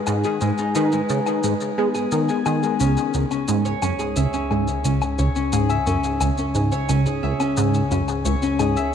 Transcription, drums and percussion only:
0.07 low woodblock medium
0.07 shaker medium
0.24 shaker soft
0.41 shaker medium
0.58 shaker soft
0.75 low woodblock soft
0.75 shaker medium
0.92 shaker soft
1.09 shaker medium
1.26 low woodblock medium
1.26 shaker soft
1.43 shaker medium
1.61 shaker soft
1.95 low woodblock soft
1.95 shaker soft
2.12 shaker medium
2.29 shaker soft
2.46 low woodblock medium
2.46 shaker medium
2.63 shaker soft
2.80 shaker medium
2.97 shaker soft
3.14 shaker medium
3.31 low woodblock soft
3.31 shaker soft
3.48 shaker medium
3.65 shaker soft
3.82 low woodblock medium
3.82 shaker medium
3.99 shaker soft
4.16 shaker medium
4.33 shaker soft
4.51 low woodblock soft
4.68 shaker soft
4.85 shaker medium
5.02 low woodblock medium
5.02 shaker soft
5.19 shaker medium
5.36 shaker soft
5.53 shaker medium
5.70 low woodblock soft
5.70 shaker soft
5.87 shaker medium
6.04 shaker soft
6.21 low woodblock medium
6.21 shaker medium
6.38 shaker soft
6.55 shaker medium
6.72 shaker soft
6.89 low woodblock soft
6.89 shaker medium
7.06 shaker soft
7.40 low woodblock medium
7.40 shaker soft
7.57 shaker medium
7.74 shaker soft
7.91 shaker medium
8.08 low woodblock soft
8.08 shaker soft
8.25 shaker medium
8.42 shaker soft
8.59 low woodblock medium
8.59 shaker medium
8.77 shaker soft

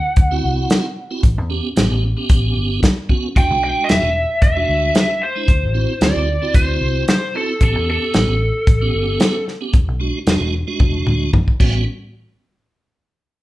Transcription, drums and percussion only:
0.16 kick loud
0.16 closed hi-hat medium
0.70 snare loud
0.70 closed hi-hat medium
1.23 kick medium
1.23 closed hi-hat medium
1.77 snare loud
1.77 closed hi-hat medium
2.29 kick loud
2.29 closed hi-hat medium
2.83 kick medium
2.83 snare loud
2.83 closed hi-hat medium
3.09 kick medium
3.36 kick medium
3.36 closed hi-hat medium
3.89 snare loud
3.89 closed hi-hat medium
4.42 kick loud
4.42 closed hi-hat medium
4.95 snare loud
4.95 closed hi-hat medium
5.48 kick medium
5.48 closed hi-hat medium
6.01 snare loud
6.01 closed hi-hat medium
6.54 kick loud
6.54 closed hi-hat medium
7.08 snare loud
7.08 closed hi-hat medium
7.61 kick medium
7.61 closed hi-hat medium
8.14 snare loud
8.14 closed hi-hat medium
8.67 kick loud
8.67 closed hi-hat medium
9.20 snare loud
9.20 closed hi-hat medium
9.48 snare soft
9.73 kick loud
9.73 closed hi-hat medium
10.27 snare loud
10.27 closed hi-hat medium
10.80 kick loud
10.80 high tom medium
11.07 mid tom medium
11.33 kick medium
11.33 mid tom medium
11.48 kick medium
11.60 kick medium
11.60 crash medium

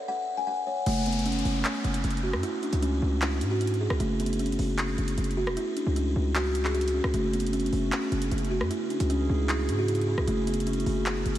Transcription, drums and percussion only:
0.86 closed hi-hat medium
0.86 crash loud
1.06 closed hi-hat medium
1.12 closed hi-hat medium
1.19 closed hi-hat medium
1.26 closed hi-hat medium
1.32 closed hi-hat medium
1.39 closed hi-hat soft
1.45 open hi-hat medium
1.65 clap loud
1.65 closed hi-hat medium
1.84 closed hi-hat medium
1.94 closed hi-hat medium
2.04 closed hi-hat medium
2.10 closed hi-hat medium
2.17 closed hi-hat soft
2.33 cross-stick medium
2.43 closed hi-hat medium
2.63 closed hi-hat soft
2.73 closed hi-hat medium
2.82 closed hi-hat medium
3.22 clap loud
3.22 closed hi-hat medium
3.41 closed hi-hat medium
3.61 closed hi-hat medium
3.67 closed hi-hat medium
3.74 closed hi-hat soft
3.90 cross-stick loud
4.00 closed hi-hat medium
4.20 closed hi-hat medium
4.26 closed hi-hat medium
4.33 closed hi-hat medium
4.39 closed hi-hat medium
4.46 closed hi-hat medium
4.52 closed hi-hat soft
4.59 open hi-hat medium
4.78 clap loud
4.78 closed hi-hat medium
4.98 closed hi-hat medium
5.08 closed hi-hat loud
5.18 closed hi-hat medium
5.24 closed hi-hat medium
5.31 closed hi-hat soft
5.47 cross-stick loud
5.57 closed hi-hat medium
5.77 closed hi-hat medium
5.96 closed hi-hat medium
6.35 clap loud
6.35 closed hi-hat medium
6.55 closed hi-hat medium
6.65 clap medium
6.75 closed hi-hat soft
6.81 closed hi-hat medium
6.88 closed hi-hat medium
7.04 cross-stick medium
7.14 closed hi-hat medium
7.33 closed hi-hat medium
7.40 closed hi-hat medium
7.47 closed hi-hat medium
7.53 closed hi-hat medium
7.60 closed hi-hat medium
7.66 closed hi-hat soft
7.73 open hi-hat medium
7.92 clap loud
7.92 closed hi-hat medium
8.12 closed hi-hat medium
8.22 closed hi-hat medium
8.31 closed hi-hat medium
8.38 closed hi-hat medium
8.45 closed hi-hat soft
8.61 cross-stick medium
8.71 closed hi-hat medium
8.90 closed hi-hat medium
9.00 closed hi-hat medium
9.10 closed hi-hat medium
9.49 clap loud
9.49 closed hi-hat medium
9.69 closed hi-hat medium
9.88 closed hi-hat medium
9.95 closed hi-hat medium
10.01 closed hi-hat soft
10.18 cross-stick medium
10.28 closed hi-hat medium
10.47 closed hi-hat medium
10.54 closed hi-hat medium
10.60 closed hi-hat medium
10.67 closed hi-hat medium
10.73 closed hi-hat medium
10.80 closed hi-hat soft
10.86 open hi-hat medium
11.06 clap loud
11.06 closed hi-hat medium
11.26 closed hi-hat medium
11.35 closed hi-hat loud

